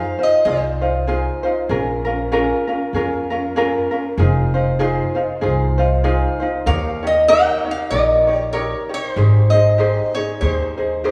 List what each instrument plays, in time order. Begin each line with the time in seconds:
Already playing: ukulele D#4 F4 G#4 C5, resonator guitar played with a steel bar F5
0.19 ukulele D#4 F4 C5
0.23 resonator guitar played with a steel bar D#5
0.45 upright bass C2, ukulele D#4 F4 G#4 C5, resonator guitar played with a steel bar C5
0.81 ukulele D#4 F4 C5
1.07 ukulele D#4 F4 G#4 C5
1.43 ukulele D#4 F4 C5
1.69 upright bass A#1, ukulele C#4 F4 G#4 A#4
2.05 ukulele C#4 F4 A#4
2.32 ukulele C#4 F4 G#4 A#4
2.67 ukulele C#4 F4 A#4
2.93 upright bass F2, ukulele C#4 F4 G#4 A#4
3.30 ukulele C#4 F4 A#4
3.56 ukulele C#4 F4 G#4 A#4
3.91 ukulele C#4 F4 A#4
4.18 upright bass F1, ukulele D#4 F4 G#4 C5
4.54 ukulele D#4 F4 C5
4.79 ukulele D#4 F4 G#4 C5
5.15 ukulele D#4 F4 C5
5.41 upright bass C2, ukulele D#4 F4 G#4 C5
5.78 ukulele D#4 F4 C5
6.04 ukulele D#4 F4 G#4 C5
6.40 ukulele D#4 F4 C5
6.66 upright bass D#2, ukulele D#4 G4 A#4 C#5, resonator guitar played with a steel bar F5
7.03 ukulele D#4 G4 C#5
7.07 resonator guitar played with a steel bar D#5
7.28 ukulele D#4 G4 A#4 C#5, resonator guitar played with a steel bar G5
7.65 ukulele D#4 G4 C#5
7.71 resonator guitar played with a steel bar F5
7.90 upright bass A#1, ukulele D#4 G4 A#4 C#5, resonator guitar played with a steel bar D#5
8.27 ukulele D#4 G4 C#5
8.35 resonator guitar played with a steel bar C#5
8.53 ukulele D#4 G4 A#4 C#5, resonator guitar played with a steel bar C#5
8.89 ukulele D#4 G4 C#5
8.94 resonator guitar played with a steel bar C#5
9.06 resonator guitar played with a steel bar C5
9.16 upright bass G#1, ukulele D#4 G4 G#4 C5
9.50 ukulele C5, resonator guitar played with a steel bar D#5
9.54 ukulele D#4 G#4
9.78 ukulele D#4 G4 G#4 C5
10.15 ukulele D#4 G#4, resonator guitar played with a steel bar C#5
10.41 upright bass D#2, ukulele D#4 G4 G#4 C5, resonator guitar played with a steel bar C5
10.77 ukulele D#4 G#4 C5
11.04 ukulele D#4 G4 G#4 C5